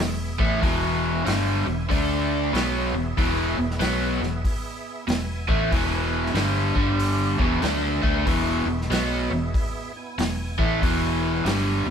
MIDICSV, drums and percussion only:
0, 0, Header, 1, 2, 480
1, 0, Start_track
1, 0, Tempo, 636943
1, 470, Time_signature, 4, 2, 24, 8
1, 8970, End_track
2, 0, Start_track
2, 0, Title_t, "Drums"
2, 3, Note_on_c, 9, 38, 100
2, 78, Note_off_c, 9, 38, 0
2, 297, Note_on_c, 9, 36, 102
2, 372, Note_off_c, 9, 36, 0
2, 473, Note_on_c, 9, 36, 106
2, 474, Note_on_c, 9, 46, 53
2, 548, Note_off_c, 9, 36, 0
2, 550, Note_off_c, 9, 46, 0
2, 954, Note_on_c, 9, 46, 53
2, 967, Note_on_c, 9, 38, 99
2, 1029, Note_off_c, 9, 46, 0
2, 1042, Note_off_c, 9, 38, 0
2, 1435, Note_on_c, 9, 36, 96
2, 1439, Note_on_c, 9, 46, 51
2, 1510, Note_off_c, 9, 36, 0
2, 1515, Note_off_c, 9, 46, 0
2, 1919, Note_on_c, 9, 46, 49
2, 1932, Note_on_c, 9, 38, 107
2, 1995, Note_off_c, 9, 46, 0
2, 2008, Note_off_c, 9, 38, 0
2, 2394, Note_on_c, 9, 36, 101
2, 2397, Note_on_c, 9, 46, 51
2, 2469, Note_off_c, 9, 36, 0
2, 2472, Note_off_c, 9, 46, 0
2, 2794, Note_on_c, 9, 38, 32
2, 2867, Note_on_c, 9, 46, 50
2, 2869, Note_off_c, 9, 38, 0
2, 2880, Note_on_c, 9, 38, 102
2, 2942, Note_off_c, 9, 46, 0
2, 2955, Note_off_c, 9, 38, 0
2, 3188, Note_on_c, 9, 38, 30
2, 3263, Note_off_c, 9, 38, 0
2, 3350, Note_on_c, 9, 36, 99
2, 3352, Note_on_c, 9, 46, 54
2, 3426, Note_off_c, 9, 36, 0
2, 3428, Note_off_c, 9, 46, 0
2, 3831, Note_on_c, 9, 46, 53
2, 3844, Note_on_c, 9, 38, 101
2, 3907, Note_off_c, 9, 46, 0
2, 3919, Note_off_c, 9, 38, 0
2, 4136, Note_on_c, 9, 36, 111
2, 4212, Note_off_c, 9, 36, 0
2, 4308, Note_on_c, 9, 36, 102
2, 4312, Note_on_c, 9, 46, 57
2, 4384, Note_off_c, 9, 36, 0
2, 4388, Note_off_c, 9, 46, 0
2, 4720, Note_on_c, 9, 38, 33
2, 4787, Note_on_c, 9, 46, 52
2, 4795, Note_off_c, 9, 38, 0
2, 4800, Note_on_c, 9, 38, 99
2, 4862, Note_off_c, 9, 46, 0
2, 4875, Note_off_c, 9, 38, 0
2, 5094, Note_on_c, 9, 36, 99
2, 5169, Note_off_c, 9, 36, 0
2, 5271, Note_on_c, 9, 46, 51
2, 5347, Note_off_c, 9, 46, 0
2, 5573, Note_on_c, 9, 36, 106
2, 5648, Note_off_c, 9, 36, 0
2, 5743, Note_on_c, 9, 46, 50
2, 5756, Note_on_c, 9, 38, 105
2, 5819, Note_off_c, 9, 46, 0
2, 5831, Note_off_c, 9, 38, 0
2, 6054, Note_on_c, 9, 36, 111
2, 6129, Note_off_c, 9, 36, 0
2, 6229, Note_on_c, 9, 36, 98
2, 6231, Note_on_c, 9, 46, 52
2, 6304, Note_off_c, 9, 36, 0
2, 6306, Note_off_c, 9, 46, 0
2, 6643, Note_on_c, 9, 38, 31
2, 6719, Note_off_c, 9, 38, 0
2, 6719, Note_on_c, 9, 46, 51
2, 6732, Note_on_c, 9, 38, 106
2, 6794, Note_off_c, 9, 46, 0
2, 6807, Note_off_c, 9, 38, 0
2, 7192, Note_on_c, 9, 36, 103
2, 7196, Note_on_c, 9, 46, 51
2, 7268, Note_off_c, 9, 36, 0
2, 7271, Note_off_c, 9, 46, 0
2, 7678, Note_on_c, 9, 46, 52
2, 7690, Note_on_c, 9, 38, 108
2, 7753, Note_off_c, 9, 46, 0
2, 7766, Note_off_c, 9, 38, 0
2, 7981, Note_on_c, 9, 36, 101
2, 8057, Note_off_c, 9, 36, 0
2, 8155, Note_on_c, 9, 36, 103
2, 8161, Note_on_c, 9, 46, 62
2, 8230, Note_off_c, 9, 36, 0
2, 8236, Note_off_c, 9, 46, 0
2, 8636, Note_on_c, 9, 46, 55
2, 8649, Note_on_c, 9, 38, 106
2, 8712, Note_off_c, 9, 46, 0
2, 8725, Note_off_c, 9, 38, 0
2, 8970, End_track
0, 0, End_of_file